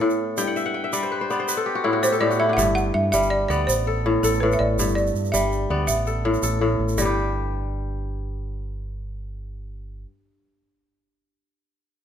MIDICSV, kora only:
0, 0, Header, 1, 2, 480
1, 0, Start_track
1, 0, Key_signature, 1, "major"
1, 0, Tempo, 366077
1, 492, Time_signature, 12, 3, 24, 8
1, 15793, End_track
2, 0, Start_track
2, 0, Title_t, "Kora"
2, 0, Program_c, 0, 46
2, 0, Note_on_c, 0, 59, 71
2, 0, Note_on_c, 0, 69, 64
2, 0, Note_on_c, 0, 74, 60
2, 16, Note_on_c, 0, 45, 71
2, 257, Note_off_c, 0, 74, 0
2, 494, Note_on_c, 0, 43, 77
2, 495, Note_on_c, 0, 79, 66
2, 557, Note_off_c, 0, 45, 0
2, 619, Note_on_c, 0, 78, 63
2, 737, Note_on_c, 0, 76, 67
2, 854, Note_off_c, 0, 78, 0
2, 859, Note_on_c, 0, 78, 72
2, 938, Note_off_c, 0, 79, 0
2, 973, Note_on_c, 0, 79, 73
2, 1096, Note_off_c, 0, 76, 0
2, 1102, Note_on_c, 0, 76, 67
2, 1217, Note_on_c, 0, 55, 72
2, 1217, Note_on_c, 0, 74, 64
2, 1244, Note_off_c, 0, 59, 0
2, 1296, Note_off_c, 0, 78, 0
2, 1346, Note_on_c, 0, 72, 61
2, 1464, Note_on_c, 0, 71, 69
2, 1504, Note_off_c, 0, 69, 0
2, 1582, Note_off_c, 0, 72, 0
2, 1587, Note_on_c, 0, 72, 65
2, 1705, Note_off_c, 0, 74, 0
2, 1711, Note_on_c, 0, 59, 72
2, 1711, Note_on_c, 0, 74, 62
2, 1826, Note_off_c, 0, 72, 0
2, 1831, Note_on_c, 0, 72, 70
2, 1910, Note_off_c, 0, 71, 0
2, 1944, Note_on_c, 0, 71, 69
2, 2003, Note_off_c, 0, 43, 0
2, 2003, Note_off_c, 0, 55, 0
2, 2059, Note_on_c, 0, 69, 67
2, 2176, Note_on_c, 0, 67, 65
2, 2195, Note_off_c, 0, 79, 0
2, 2298, Note_on_c, 0, 66, 67
2, 2412, Note_on_c, 0, 64, 68
2, 2418, Note_on_c, 0, 45, 77
2, 2457, Note_off_c, 0, 76, 0
2, 2523, Note_off_c, 0, 66, 0
2, 2528, Note_on_c, 0, 66, 67
2, 2607, Note_off_c, 0, 67, 0
2, 2661, Note_on_c, 0, 67, 72
2, 2776, Note_off_c, 0, 69, 0
2, 2781, Note_on_c, 0, 69, 67
2, 2878, Note_off_c, 0, 45, 0
2, 2888, Note_off_c, 0, 67, 0
2, 2893, Note_on_c, 0, 45, 77
2, 2893, Note_on_c, 0, 67, 70
2, 2972, Note_off_c, 0, 66, 0
2, 3021, Note_on_c, 0, 66, 65
2, 3132, Note_off_c, 0, 64, 0
2, 3138, Note_on_c, 0, 64, 66
2, 3164, Note_off_c, 0, 74, 0
2, 3267, Note_on_c, 0, 62, 64
2, 3384, Note_on_c, 0, 43, 81
2, 3388, Note_off_c, 0, 72, 0
2, 3448, Note_off_c, 0, 45, 0
2, 3463, Note_off_c, 0, 66, 0
2, 3556, Note_off_c, 0, 71, 0
2, 4113, Note_on_c, 0, 55, 77
2, 4154, Note_off_c, 0, 59, 0
2, 4509, Note_off_c, 0, 69, 0
2, 4587, Note_on_c, 0, 74, 62
2, 4588, Note_on_c, 0, 59, 74
2, 4745, Note_off_c, 0, 67, 0
2, 4892, Note_off_c, 0, 43, 0
2, 4892, Note_off_c, 0, 55, 0
2, 5076, Note_on_c, 0, 69, 64
2, 5192, Note_off_c, 0, 64, 0
2, 5320, Note_on_c, 0, 45, 77
2, 5469, Note_off_c, 0, 62, 0
2, 5556, Note_off_c, 0, 69, 0
2, 5561, Note_on_c, 0, 69, 69
2, 5792, Note_off_c, 0, 45, 0
2, 5807, Note_on_c, 0, 45, 75
2, 6040, Note_off_c, 0, 74, 0
2, 6285, Note_on_c, 0, 43, 74
2, 6336, Note_off_c, 0, 45, 0
2, 6996, Note_on_c, 0, 55, 77
2, 7031, Note_off_c, 0, 59, 0
2, 7289, Note_off_c, 0, 69, 0
2, 7478, Note_on_c, 0, 59, 68
2, 7482, Note_on_c, 0, 74, 59
2, 7777, Note_off_c, 0, 55, 0
2, 7778, Note_off_c, 0, 43, 0
2, 7958, Note_on_c, 0, 69, 61
2, 8195, Note_on_c, 0, 45, 75
2, 8428, Note_off_c, 0, 69, 0
2, 8434, Note_on_c, 0, 69, 64
2, 8655, Note_off_c, 0, 45, 0
2, 8671, Note_on_c, 0, 45, 69
2, 8935, Note_off_c, 0, 74, 0
2, 9150, Note_on_c, 0, 43, 68
2, 9199, Note_on_c, 0, 55, 68
2, 9217, Note_off_c, 0, 45, 0
2, 9250, Note_on_c, 0, 67, 67
2, 9922, Note_off_c, 0, 59, 0
2, 10161, Note_off_c, 0, 69, 0
2, 13228, Note_off_c, 0, 43, 0
2, 13277, Note_off_c, 0, 55, 0
2, 13328, Note_off_c, 0, 67, 0
2, 15793, End_track
0, 0, End_of_file